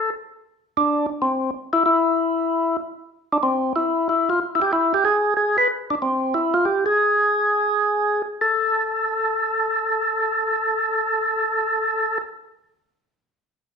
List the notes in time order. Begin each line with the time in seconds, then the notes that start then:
Already playing: A4
0.77 D4
1.22 C4
1.73 E4
1.86 E4
3.33 D4
3.43 C4
3.76 E4
4.09 E4
4.30 F4
4.55 E4
4.62 G4
4.73 E4
4.94 G4
5.05 G#4
5.37 G#4
5.58 B4
5.90 D4
6.02 C4
6.34 E4
6.54 F4
6.65 G4
6.86 G#4
8.41 A4